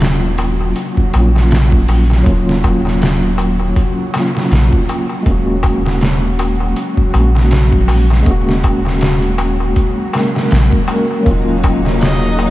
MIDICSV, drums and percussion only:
0, 0, Header, 1, 3, 480
1, 0, Start_track
1, 0, Key_signature, -6, "minor"
1, 0, Tempo, 750000
1, 1449, Time_signature, 4, 2, 24, 8
1, 8002, End_track
2, 0, Start_track
2, 0, Title_t, "Darbuka"
2, 5, Note_on_c, 9, 63, 38
2, 69, Note_off_c, 9, 63, 0
2, 247, Note_on_c, 9, 63, 85
2, 311, Note_off_c, 9, 63, 0
2, 387, Note_on_c, 9, 63, 44
2, 451, Note_off_c, 9, 63, 0
2, 488, Note_on_c, 9, 63, 38
2, 552, Note_off_c, 9, 63, 0
2, 728, Note_on_c, 9, 63, 87
2, 792, Note_off_c, 9, 63, 0
2, 865, Note_on_c, 9, 63, 45
2, 929, Note_off_c, 9, 63, 0
2, 967, Note_on_c, 9, 63, 33
2, 1031, Note_off_c, 9, 63, 0
2, 1208, Note_on_c, 9, 63, 68
2, 1272, Note_off_c, 9, 63, 0
2, 1344, Note_on_c, 9, 63, 45
2, 1408, Note_off_c, 9, 63, 0
2, 1444, Note_on_c, 9, 63, 35
2, 1508, Note_off_c, 9, 63, 0
2, 1690, Note_on_c, 9, 63, 86
2, 1754, Note_off_c, 9, 63, 0
2, 1824, Note_on_c, 9, 63, 51
2, 1888, Note_off_c, 9, 63, 0
2, 1927, Note_on_c, 9, 63, 37
2, 1991, Note_off_c, 9, 63, 0
2, 2163, Note_on_c, 9, 63, 80
2, 2227, Note_off_c, 9, 63, 0
2, 2301, Note_on_c, 9, 63, 52
2, 2365, Note_off_c, 9, 63, 0
2, 2408, Note_on_c, 9, 63, 38
2, 2472, Note_off_c, 9, 63, 0
2, 2648, Note_on_c, 9, 63, 91
2, 2712, Note_off_c, 9, 63, 0
2, 2783, Note_on_c, 9, 63, 47
2, 2847, Note_off_c, 9, 63, 0
2, 2881, Note_on_c, 9, 63, 35
2, 2945, Note_off_c, 9, 63, 0
2, 3132, Note_on_c, 9, 63, 77
2, 3196, Note_off_c, 9, 63, 0
2, 3260, Note_on_c, 9, 63, 54
2, 3324, Note_off_c, 9, 63, 0
2, 3367, Note_on_c, 9, 63, 41
2, 3431, Note_off_c, 9, 63, 0
2, 3603, Note_on_c, 9, 63, 92
2, 3667, Note_off_c, 9, 63, 0
2, 3747, Note_on_c, 9, 63, 52
2, 3811, Note_off_c, 9, 63, 0
2, 3854, Note_on_c, 9, 63, 35
2, 3918, Note_off_c, 9, 63, 0
2, 4091, Note_on_c, 9, 63, 86
2, 4155, Note_off_c, 9, 63, 0
2, 4226, Note_on_c, 9, 63, 52
2, 4290, Note_off_c, 9, 63, 0
2, 4329, Note_on_c, 9, 63, 38
2, 4393, Note_off_c, 9, 63, 0
2, 4569, Note_on_c, 9, 63, 82
2, 4633, Note_off_c, 9, 63, 0
2, 4706, Note_on_c, 9, 63, 53
2, 4770, Note_off_c, 9, 63, 0
2, 4808, Note_on_c, 9, 63, 38
2, 4872, Note_off_c, 9, 63, 0
2, 5043, Note_on_c, 9, 63, 80
2, 5107, Note_off_c, 9, 63, 0
2, 5185, Note_on_c, 9, 63, 52
2, 5249, Note_off_c, 9, 63, 0
2, 5291, Note_on_c, 9, 63, 35
2, 5355, Note_off_c, 9, 63, 0
2, 5530, Note_on_c, 9, 63, 84
2, 5594, Note_off_c, 9, 63, 0
2, 5664, Note_on_c, 9, 63, 50
2, 5728, Note_off_c, 9, 63, 0
2, 5771, Note_on_c, 9, 63, 39
2, 5835, Note_off_c, 9, 63, 0
2, 6005, Note_on_c, 9, 63, 91
2, 6069, Note_off_c, 9, 63, 0
2, 6145, Note_on_c, 9, 63, 53
2, 6209, Note_off_c, 9, 63, 0
2, 6248, Note_on_c, 9, 63, 40
2, 6312, Note_off_c, 9, 63, 0
2, 6485, Note_on_c, 9, 63, 88
2, 6549, Note_off_c, 9, 63, 0
2, 6624, Note_on_c, 9, 63, 49
2, 6688, Note_off_c, 9, 63, 0
2, 6731, Note_on_c, 9, 63, 37
2, 6795, Note_off_c, 9, 63, 0
2, 6962, Note_on_c, 9, 63, 86
2, 7026, Note_off_c, 9, 63, 0
2, 7108, Note_on_c, 9, 63, 50
2, 7172, Note_off_c, 9, 63, 0
2, 7207, Note_on_c, 9, 63, 41
2, 7271, Note_off_c, 9, 63, 0
2, 7449, Note_on_c, 9, 63, 94
2, 7513, Note_off_c, 9, 63, 0
2, 7584, Note_on_c, 9, 63, 49
2, 7648, Note_off_c, 9, 63, 0
2, 7689, Note_on_c, 9, 63, 38
2, 7753, Note_off_c, 9, 63, 0
2, 7928, Note_on_c, 9, 63, 77
2, 7992, Note_off_c, 9, 63, 0
2, 8002, End_track
3, 0, Start_track
3, 0, Title_t, "Drums"
3, 3, Note_on_c, 9, 42, 81
3, 12, Note_on_c, 9, 38, 108
3, 67, Note_off_c, 9, 42, 0
3, 76, Note_off_c, 9, 38, 0
3, 244, Note_on_c, 9, 42, 64
3, 308, Note_off_c, 9, 42, 0
3, 484, Note_on_c, 9, 42, 75
3, 548, Note_off_c, 9, 42, 0
3, 622, Note_on_c, 9, 36, 80
3, 686, Note_off_c, 9, 36, 0
3, 726, Note_on_c, 9, 42, 68
3, 790, Note_off_c, 9, 42, 0
3, 872, Note_on_c, 9, 38, 41
3, 936, Note_off_c, 9, 38, 0
3, 965, Note_on_c, 9, 42, 87
3, 974, Note_on_c, 9, 38, 109
3, 1029, Note_off_c, 9, 42, 0
3, 1038, Note_off_c, 9, 38, 0
3, 1103, Note_on_c, 9, 36, 92
3, 1167, Note_off_c, 9, 36, 0
3, 1206, Note_on_c, 9, 46, 74
3, 1270, Note_off_c, 9, 46, 0
3, 1354, Note_on_c, 9, 38, 42
3, 1418, Note_off_c, 9, 38, 0
3, 1448, Note_on_c, 9, 36, 104
3, 1449, Note_on_c, 9, 42, 84
3, 1512, Note_off_c, 9, 36, 0
3, 1513, Note_off_c, 9, 42, 0
3, 1595, Note_on_c, 9, 38, 44
3, 1659, Note_off_c, 9, 38, 0
3, 1689, Note_on_c, 9, 36, 84
3, 1690, Note_on_c, 9, 42, 60
3, 1753, Note_off_c, 9, 36, 0
3, 1754, Note_off_c, 9, 42, 0
3, 1836, Note_on_c, 9, 38, 34
3, 1900, Note_off_c, 9, 38, 0
3, 1930, Note_on_c, 9, 42, 73
3, 1939, Note_on_c, 9, 38, 104
3, 1994, Note_off_c, 9, 42, 0
3, 2003, Note_off_c, 9, 38, 0
3, 2067, Note_on_c, 9, 42, 40
3, 2131, Note_off_c, 9, 42, 0
3, 2170, Note_on_c, 9, 42, 64
3, 2234, Note_off_c, 9, 42, 0
3, 2409, Note_on_c, 9, 36, 100
3, 2409, Note_on_c, 9, 42, 78
3, 2473, Note_off_c, 9, 36, 0
3, 2473, Note_off_c, 9, 42, 0
3, 2650, Note_on_c, 9, 42, 66
3, 2659, Note_on_c, 9, 38, 41
3, 2714, Note_off_c, 9, 42, 0
3, 2723, Note_off_c, 9, 38, 0
3, 2795, Note_on_c, 9, 38, 51
3, 2859, Note_off_c, 9, 38, 0
3, 2889, Note_on_c, 9, 42, 84
3, 2898, Note_on_c, 9, 38, 109
3, 2953, Note_off_c, 9, 42, 0
3, 2962, Note_off_c, 9, 38, 0
3, 3024, Note_on_c, 9, 36, 93
3, 3088, Note_off_c, 9, 36, 0
3, 3129, Note_on_c, 9, 42, 63
3, 3193, Note_off_c, 9, 42, 0
3, 3367, Note_on_c, 9, 42, 80
3, 3368, Note_on_c, 9, 36, 107
3, 3431, Note_off_c, 9, 42, 0
3, 3432, Note_off_c, 9, 36, 0
3, 3608, Note_on_c, 9, 36, 85
3, 3609, Note_on_c, 9, 42, 64
3, 3672, Note_off_c, 9, 36, 0
3, 3673, Note_off_c, 9, 42, 0
3, 3753, Note_on_c, 9, 38, 43
3, 3817, Note_off_c, 9, 38, 0
3, 3848, Note_on_c, 9, 42, 76
3, 3857, Note_on_c, 9, 38, 103
3, 3912, Note_off_c, 9, 42, 0
3, 3921, Note_off_c, 9, 38, 0
3, 4089, Note_on_c, 9, 42, 61
3, 4153, Note_off_c, 9, 42, 0
3, 4329, Note_on_c, 9, 42, 73
3, 4393, Note_off_c, 9, 42, 0
3, 4464, Note_on_c, 9, 36, 84
3, 4528, Note_off_c, 9, 36, 0
3, 4570, Note_on_c, 9, 42, 69
3, 4634, Note_off_c, 9, 42, 0
3, 4714, Note_on_c, 9, 38, 45
3, 4778, Note_off_c, 9, 38, 0
3, 4807, Note_on_c, 9, 42, 83
3, 4816, Note_on_c, 9, 38, 114
3, 4871, Note_off_c, 9, 42, 0
3, 4880, Note_off_c, 9, 38, 0
3, 4944, Note_on_c, 9, 36, 88
3, 5008, Note_off_c, 9, 36, 0
3, 5048, Note_on_c, 9, 46, 82
3, 5112, Note_off_c, 9, 46, 0
3, 5192, Note_on_c, 9, 38, 41
3, 5256, Note_off_c, 9, 38, 0
3, 5287, Note_on_c, 9, 42, 84
3, 5288, Note_on_c, 9, 36, 110
3, 5351, Note_off_c, 9, 42, 0
3, 5352, Note_off_c, 9, 36, 0
3, 5432, Note_on_c, 9, 38, 46
3, 5496, Note_off_c, 9, 38, 0
3, 5527, Note_on_c, 9, 42, 64
3, 5528, Note_on_c, 9, 36, 88
3, 5591, Note_off_c, 9, 42, 0
3, 5592, Note_off_c, 9, 36, 0
3, 5674, Note_on_c, 9, 38, 37
3, 5738, Note_off_c, 9, 38, 0
3, 5767, Note_on_c, 9, 42, 77
3, 5776, Note_on_c, 9, 38, 105
3, 5831, Note_off_c, 9, 42, 0
3, 5840, Note_off_c, 9, 38, 0
3, 5903, Note_on_c, 9, 42, 40
3, 5967, Note_off_c, 9, 42, 0
3, 6006, Note_on_c, 9, 42, 60
3, 6070, Note_off_c, 9, 42, 0
3, 6247, Note_on_c, 9, 42, 78
3, 6248, Note_on_c, 9, 36, 98
3, 6311, Note_off_c, 9, 42, 0
3, 6312, Note_off_c, 9, 36, 0
3, 6488, Note_on_c, 9, 42, 74
3, 6497, Note_on_c, 9, 38, 41
3, 6552, Note_off_c, 9, 42, 0
3, 6561, Note_off_c, 9, 38, 0
3, 6632, Note_on_c, 9, 38, 51
3, 6696, Note_off_c, 9, 38, 0
3, 6725, Note_on_c, 9, 42, 87
3, 6734, Note_on_c, 9, 38, 107
3, 6789, Note_off_c, 9, 42, 0
3, 6798, Note_off_c, 9, 38, 0
3, 6864, Note_on_c, 9, 36, 91
3, 6928, Note_off_c, 9, 36, 0
3, 6968, Note_on_c, 9, 42, 62
3, 7032, Note_off_c, 9, 42, 0
3, 7207, Note_on_c, 9, 42, 90
3, 7208, Note_on_c, 9, 36, 107
3, 7271, Note_off_c, 9, 42, 0
3, 7272, Note_off_c, 9, 36, 0
3, 7446, Note_on_c, 9, 42, 64
3, 7448, Note_on_c, 9, 36, 92
3, 7510, Note_off_c, 9, 42, 0
3, 7512, Note_off_c, 9, 36, 0
3, 7592, Note_on_c, 9, 38, 44
3, 7656, Note_off_c, 9, 38, 0
3, 7688, Note_on_c, 9, 42, 74
3, 7697, Note_on_c, 9, 38, 103
3, 7752, Note_off_c, 9, 42, 0
3, 7761, Note_off_c, 9, 38, 0
3, 7927, Note_on_c, 9, 42, 61
3, 7991, Note_off_c, 9, 42, 0
3, 8002, End_track
0, 0, End_of_file